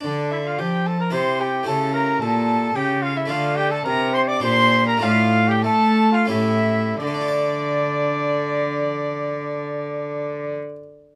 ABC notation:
X:1
M:3/4
L:1/16
Q:1/4=99
K:Dm
V:1 name="Violin"
d2 e f g2 a b c'2 g2 | a2 b2 a4 g2 f e | f2 g a b2 c' d' c'3 b | f3 g a3 f e4 |
d12- | d12 |]
V:2 name="Trumpet"
D2 E F G2 A B c2 G2 | A2 B2 A4 G2 F E | F2 G A B2 c d c3 B | F3 G A3 F E4 |
d12- | d12 |]
V:3 name="Harpsichord"
D8 [EG]4 | [A,EG]12 | [A,DF]8 [DG]4 | [A,DF]8 [A,^CG]4 |
[D,A,DFd]12- | [D,A,DFd]12 |]
V:4 name="Harpsichord" clef=bass
D,4 F,4 C,4 | ^C,4 B,,4 C,4 | D,4 C,4 B,,4 | A,,4 A,4 A,,4 |
z12 | z12 |]
V:5 name="Cello" clef=bass
D,4 F,4 C,4 | ^C,4 B,,4 C,4 | D,4 C,4 B,,4 | A,,4 A,4 A,,4 |
D,12- | D,12 |]